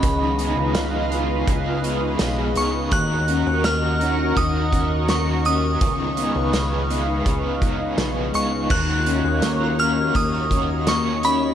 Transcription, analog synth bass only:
X:1
M:4/4
L:1/16
Q:1/4=83
K:Ebm
V:1 name="Analog synth bass" clef=bass
D,,3 D,, D,,4 D,,4 C,,2 D,,2 | E,,3 E,, E,,4 E,,8 | D,,3 D,, D,,4 D,,4 C,,2 D,,2 | E,,3 E,, E,,4 E,,8 |]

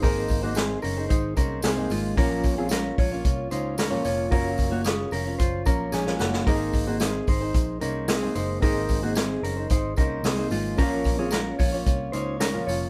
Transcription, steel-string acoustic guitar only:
X:1
M:4/4
L:1/16
Q:1/4=111
K:Abmix
V:1 name="Steel-string acoustic guitar"
[A,B,EAc]3 [EAc]4 [EAc]3 [B,EAc]3 [A,B,EAc]3 | [B,,F,B,DFd]3 [B,DFd]4 [B,DFd]3 [B,DFd]3 [B,,F,B,DFd]3 | [G,B,DFd]3 [DFd]4 [DFd]3 [B,DFd]3 [G,B,DFd]3 | [A,B,EAc]3 [EAc]4 [EAc]3 [B,EAc]3 [A,B,EAc]3 |
[A,B,EAc]3 [EAc]4 [EAc]3 [B,EAc]3 [A,B,EAc]3 | [B,,F,B,DFd]3 [B,DFd]4 [B,DFd]3 [B,DFd]3 [B,,F,B,DFd]3 |]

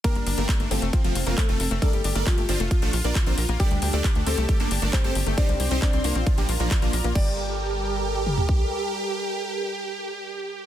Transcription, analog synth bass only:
X:1
M:4/4
L:1/16
Q:1/4=135
K:Gm
V:1 name="Analog synth bass" clef=bass
z G,,, G,,, G,,, z G,,, G,,, F,,, z F,,, F,,, F,,, z F,,, F,,, F,,, | z G,,, G,,, G,,, z G,,, G,,, F,,, z B,,, B,,, B,,, z B,,, B,,, B,,, | z D,, D,, D,, z D,, D,, C,, z G,,, G,,, G,,, z G,,, G,,, G,,, | z C,, C,, C,, z C,, C,, B,,, z B,,, B,,, B,,, z B,,, B,,, B,,, |
G,,,12 z4 | z16 |]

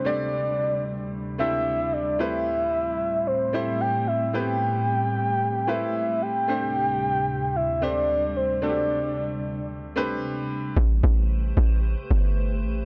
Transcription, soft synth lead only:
X:1
M:4/4
L:1/8
Q:"Swing 16ths" 1/4=112
K:Am
V:1 name="Soft synth lead"
d4 z e2 d | e4 c e g e | g4- g e2 g- | g4 e d2 c |
d4 z4 | z8 |]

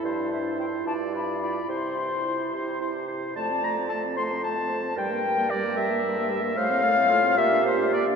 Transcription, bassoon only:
X:1
M:6/8
L:1/8
Q:3/8=74
K:C
V:1 name="Bassoon" clef=bass
G,,3 G,,3 | C,3 C,3 | [K:F] F,,6 | G,,6 |
A,,3 B,,3 |]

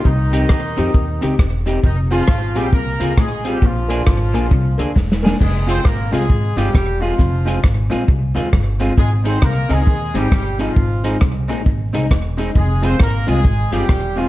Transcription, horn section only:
X:1
M:4/4
L:1/8
Q:"Swing" 1/4=134
K:Fm
V:1 name="Horn section"
[E,E]6 z2 | [E,E] [F,F]2 [G,G] [B,B]2 [A,A] [G,G] | [F,F]6 z2 | [A,A] [Cc] [B,B] [A,A]2 [G,G]2 [F,F]- |
[F,F]2 z6 | [A,A] [Cc] [B,B] [A,A]2 [G,G]2 [F,F]- | [F,F]2 z6 | [A,A] [Cc] [B,B] [A,A]2 [G,G]2 [F,F] |]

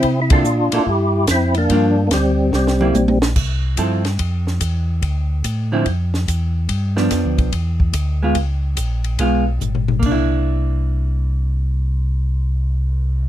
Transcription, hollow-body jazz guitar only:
X:1
M:4/4
L:1/8
Q:"Swing" 1/4=144
K:Cmix
V:1 name="Hollow-body jazz guitar"
z [B,EA] z [B,EA] z4 | [F,B,D] z4 [G,B,E] z2 | z2 [F,CEA] z4 z | z3 [D,F,CE] z4 |
z [F,=B,D]3 z3 [_A,B,F] | z4 [_A,_CF] z3 | [B,DE]8- | [B,DE]8 |]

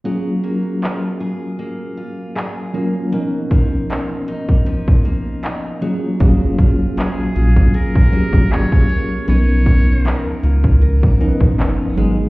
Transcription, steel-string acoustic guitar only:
X:1
M:4/4
L:1/8
Q:"Swing 16ths" 1/4=78
K:F#
V:1 name="Steel-string acoustic guitar"
F, A, E G A, E G A, | B,, E, A, D E, A, D F, | F, E G E G A, E A, | B, E A E A D E G, |]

